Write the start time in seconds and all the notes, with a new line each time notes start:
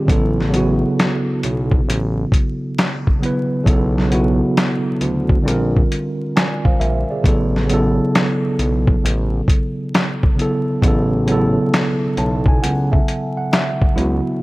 0.05 A1 C#3 F#3 B3, kick
0.09 E4 A4, closed hi-hat
0.40 snare
0.50 C#3 F#3 B3, closed hi-hat
0.55 E4 F#4
1.00 snare, closed hi-hat
1.43 B1, closed hi-hat
1.71 kick
1.88 A1, closed hi-hat
2.32 kick, closed hi-hat
2.78 snare, closed hi-hat
3.07 kick
3.19 C#3 F#3 B3, closed hi-hat
3.24 E4 B4
3.64 B1 C#3 F#3 B3, kick, closed hi-hat
3.69 E4 A4
3.98 snare
4.09 C#3 F#3 B3, closed hi-hat
4.13 E4 F#4
4.57 snare, closed hi-hat
5.01 D2, closed hi-hat
5.29 kick
5.42 A#1 D3 G3 C4
5.47 F4 A#4, closed hi-hat
5.76 kick
5.92 closed hi-hat
6.36 D5 G#5, snare, closed hi-hat
6.65 C5 F5, kick
6.80 A#1 A#4 E5, closed hi-hat
7.11 G#4 D5
7.23 A1 C#3 F#3 B3, kick, closed hi-hat
7.27 E4 A4
7.56 snare
7.68 C#3 F#3 B3, closed hi-hat
7.72 E4 A4
8.15 snare, closed hi-hat
8.59 B1, closed hi-hat
8.87 kick
9.04 A1, closed hi-hat
9.48 kick, closed hi-hat
9.95 snare, closed hi-hat
10.23 kick
10.35 C#3 F#3 B3, closed hi-hat
10.40 E4 A4
10.82 A1 C#3 F#3 B3, kick, closed hi-hat
10.86 E4 A4
11.26 C#3 F#3 B3, closed hi-hat
11.31 E4 A4
11.74 snare, closed hi-hat
12.17 B1 A5, closed hi-hat
12.46 G#5, kick
12.62 C#2 F#5, closed hi-hat
12.92 E5, kick
13.08 closed hi-hat
13.38 F#5
13.53 E5, snare, closed hi-hat
13.82 kick
13.95 C#2 C#3 F#3 B3 E4, closed hi-hat
13.99 E4 F#4